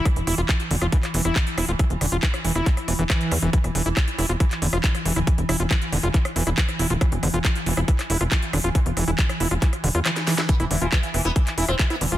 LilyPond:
<<
  \new Staff \with { instrumentName = "Acid bass" } { \clef bass \time 4/4 \key c \major \tempo 4 = 138 e16 r16 e'16 f'16 e16 r16 d16 f'16 e16 r16 e16 e'16 e16 r16 e'16 f'16 | e16 r16 d16 f'16 e16 r16 e16 e'16 e16 r16 e16 e16 e8 f16 e16 | e16 r16 e16 e'16 e16 r16 e'16 f'16 e16 r16 d16 f'16 e16 r16 e16 e'16 | e16 r16 e'16 f'16 e16 r16 d16 f'16 e16 r16 e16 e'16 e16 r16 e'16 f'16 |
e16 r16 d16 f'16 e16 r16 e16 e'16 e16 r16 e'16 f'16 e16 r16 d16 f'16 | e16 r16 e16 e'16 e16 r16 e'16 f'16 e16 r16 d16 f'16 e16 r16 e16 e'16 | e16 e'16 d16 f'16 e16 r16 e16 e'16 e16 r16 e'16 f'16 e16 e'16 d16 f'16 | }
  \new Staff \with { instrumentName = "Sitar" } { \clef bass \time 4/4 \key c \major r1 | r1 | r1 | r1 |
r1 | r1 | b16 e16 e16 e16 b16 e16 e16 b16 e16 e16 e16 c'16 e16 b16 e16 e16 | }
  \new Staff \with { instrumentName = "Synth texture" } { \clef bass \time 4/4 \key c \major e1~ | e1~ | e1~ | e1~ |
e1~ | e1 | e1 | }
  \new Staff \with { instrumentName = "Analog synth bass" } { \clef bass \time 4/4 \key c \major r16 e,,16 e,,16 e,,16 r8 e,,16 e,,16 r8 e,,16 e,,16 r8 e,,16 d,,16 | r16 e,,16 e,,16 e,,16 r8 e,,16 e,,16 r8 e,,16 e,,16 r8 e,16 e,,16 | r16 e,,16 e,,16 e,,16 r8 e,,16 e,,16 r8 e,,16 e,,16 r8 e,,16 d,,16 | r16 e,,16 e,,16 e,,16 r8 e,,16 e,,16 r8 e,,16 e,,16 r8 e,,16 d,,16 |
r16 e,,16 e,,16 e,,16 r8 e,,16 e,,16 r8 e,,16 e,,16 r8 e,,16 d,,16 | r16 e,,16 e,,16 e,,16 r8 e,,16 e,,16 r8 e,,16 e,16 r4 | r16 e,,16 e,,16 e,,16 r8 e,,16 e,,16 r8 e,,16 e,,16 r8 e,,16 d,,16 | }
  \new DrumStaff \with { instrumentName = "Drums" } \drummode { \time 4/4 <hh bd ss>16 hh16 <hho ss>16 hh16 <hc hh bd ss>16 hh16 hho16 <hh ss>16 <hh bd>16 <hc hh ss>16 hho16 <hh ss>16 <hc hh bd>16 hh16 <hho ss>16 hh16 | <hh bd ss>16 hh16 <hho ss>16 hh16 <hc hh bd>16 <hh ss>16 hho16 <hh ss>16 <hc hh bd>16 <hh ss>16 hho16 hh16 <hc hh bd ss>16 hh16 <hho ss>16 hh16 | <hh bd>16 <hh ss>16 hho16 hh16 <hc hh bd ss>16 hh16 <hho ss>16 hh16 <hh bd ss>16 <hc hh>16 hho16 <hh ss>16 <hc hh bd>16 <hh ss>16 hho16 <hh ss>16 | <hh bd>16 hh16 <hho ss>16 hh16 <hc hh bd ss>16 hh16 hho16 hh16 <hc hh bd>16 <hh ss>16 hho16 <hh ss>16 <hc hh bd>16 <hh ss>16 hho16 hh16 |
<hh bd ss>16 hh16 <hho ss>16 hh16 <hc hh bd ss>16 hh16 hho16 <hh ss>16 <hh bd>16 <hc hh ss>16 hho16 <hh ss>16 <hc hh bd>16 hh16 <hho ss>16 hh16 | <hh bd ss>16 hh16 <hho ss>16 hh16 <hc hh bd>16 <hh ss>16 hho16 <hh ss>16 <hc hh bd>16 <hh ss>16 hho16 hh16 <hc hh ss>16 <hh sn>16 <hho sn>16 <hh sn>16 | <hh bd>16 <hh ss>16 hho16 hh16 <hc hh bd ss>16 hh16 <hho ss>16 hh16 <hh bd ss>16 <hc hh>16 hho16 <hh ss>16 <hc hh bd>16 <hh ss>16 hho16 <hh ss>16 | }
>>